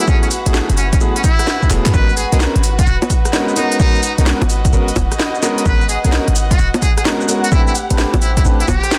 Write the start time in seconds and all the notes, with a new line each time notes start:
Already playing: F#4 B4 E5 F#5
0.07 F#3 A3 B3 C#4 E4 G#4, kick, shaker
0.23 C#4, closed hi-hat, shaker
0.31 open hi-hat, shaker
0.46 A1 F#3 A3 B3 E4 G#4, closed hi-hat, shaker
0.54 F#3 A3 B3 E4 G#4, snare, shaker
0.69 F#1, closed hi-hat, shaker
0.77 C#4, open hi-hat, shaker
0.93 C#4, kick, closed hi-hat, shaker
1.01 F#3 A3 B3 E4 G#4, shaker
1.16 C#4, closed hi-hat, shaker
1.24 E4, kick, open hi-hat, shaker
1.39 cross-stick, closed hi-hat, shaker
1.47 snare, shaker
1.62 kick, shaker
1.70 E1 F#3 A3 B3 E4 G#4, clap, open hi-hat, shaker
1.86 F#2, clap, closed hi-hat, shaker
1.94 G#1 G#3 B3 C#4 F#4 A#4 B4 F#5, kick, shaker
2.09 shaker
2.17 G#4, open hi-hat, shaker
2.32 B1 G#3 B3 C#4 F#4 G#4 A#4, closed hi-hat, shaker
2.40 G#3 B3 C#4 F#4 A#4, snare, shaker
2.56 G#1, closed hi-hat, shaker
2.64 open hi-hat, shaker
2.79 F#4, kick, closed hi-hat, shaker
2.87 D#1, shaker
2.99 D#5, closed hi-hat, high bongo, shaker
3.10 kick, open hi-hat, shaker
3.25 cross-stick, closed hi-hat, shaker
3.33 G#3 B3 C#4 F#4 A#4, snare, shaker
3.48 shaker
3.56 G#3 B3 C#4 D#4 F#4 A#4, open hi-hat, shaker
3.72 closed hi-hat, shaker
3.80 G#3 B3 C#4 D#4 F#4, kick, shaker
3.95 shaker
4.03 D#4, open hi-hat, shaker
4.18 B1 G#3 B3 C#4 D#4 F#4 A#4, closed hi-hat, shaker
4.26 G#3 B3 C#4 F#4 A#4, snare, shaker
4.42 G#1, closed hi-hat, high bongo, shaker
4.50 open hi-hat, shaker
4.65 kick, closed hi-hat, shaker
4.73 G#1 G#3 B3 C#4 F#4 A#4, shaker
4.88 closed hi-hat, shaker
4.96 D#1, kick, open hi-hat, high bongo, shaker
5.12 cross-stick, closed hi-hat, shaker
5.19 snare, shaker
5.35 shaker
5.43 G#3 B3 C#4 F#4 A#4, snare, open hi-hat, shaker
5.58 closed hi-hat, shaker
5.66 G#1 G#3 B3 C#4 F#4 A#4 B4, kick, shaker
5.81 shaker
5.89 G#4, open hi-hat, shaker
6.04 B1 G#3 B3 C#4 F#4 G#4 A#4, closed hi-hat, shaker
6.12 G#3 B3 C#4 F#4 A#4, snare, shaker
6.28 G#1, closed hi-hat, shaker
6.36 open hi-hat, shaker
6.51 F#4, kick, closed hi-hat, shaker
6.59 D#1, shaker
6.74 closed hi-hat, high bongo, shaker
6.82 G#4, kick, open hi-hat, shaker
6.97 G#4, cross-stick, closed hi-hat, shaker
7.05 G#3 B3 C#4 F#4 A#4, snare, shaker
7.21 shaker
7.28 G#3 B3 C#4 F#4 A#4, open hi-hat, shaker
7.44 F#4, closed hi-hat, shaker
7.52 A3 C4 D4 E4 G4 B4, kick, shaker
7.67 E4, shaker
7.75 open hi-hat, shaker
7.90 A1 A3 C4 D4 G4 B4, closed hi-hat, shaker
7.98 A3 C4 D4 G4 B4, snare, shaker
8.14 A1 C5, closed hi-hat, high bongo, shaker
8.22 E4, open hi-hat, shaker
8.37 E4, kick, cross-stick, closed hi-hat, shaker
8.45 A1 A3 C4 D4 G4 B4, shaker
8.60 E4, closed hi-hat, shaker
8.68 E1 G4, kick, open hi-hat, high bongo, shaker
8.78 E5
8.84 cross-stick, closed hi-hat, shaker
8.91 snare, shaker